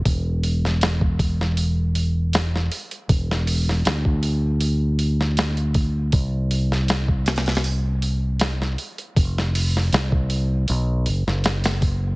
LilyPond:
<<
  \new Staff \with { instrumentName = "Fingered electric bass" } { \clef bass \time 4/4 \key d \dorian \tempo 4 = 79 e,,2.~ e,,8 r8 | e,,4 d,2. | c,2.~ c,8 r8 | f,,4 c,4 b,,8 fis,,16 fis,,4~ fis,,16 | }
  \new DrumStaff \with { instrumentName = "Drums" } \drummode { \time 4/4 <hho bd>8 hho16 sn16 <hho sn>16 bd16 <hho bd>16 sn16 hho8 hho8 <hho sn>16 sn16 hho16 hh16 | <hho bd>16 sn16 hho16 sn16 <hho sn>16 bd16 hho8 hho8 hho16 sn16 <hho sn>16 hh16 <hho bd>8 | <hho bd>8 hho16 sn16 <hho sn>16 bd16 <hho sn>32 <hho sn>32 <hho sn>32 <hho sn>32 hho8 hho8 <hho sn>16 sn16 hho16 hh16 | <hho bd>16 sn16 hho16 sn16 <hho sn>16 bd16 hho8 hho8 hho16 sn16 <hho sn>16 <hho sn>16 <hho bd>8 | }
>>